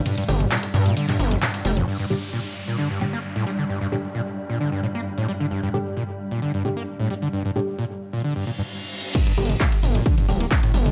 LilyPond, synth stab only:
\new Staff \with { instrumentName = "Synth stab" } { \clef bass \time 4/4 \key g \minor \tempo 4 = 132 r8 <d g g'>8 r2. | r8 <d g g'>8 r4. <d g g'>8 r4 | r8 <d g g'>8 r2. | r8 <d g g'>8 r4. <d g g'>8 r4 |
r8 <d g g'>8 r2. | r8 <d g g'>8 r4. <d g g'>8 r4 | }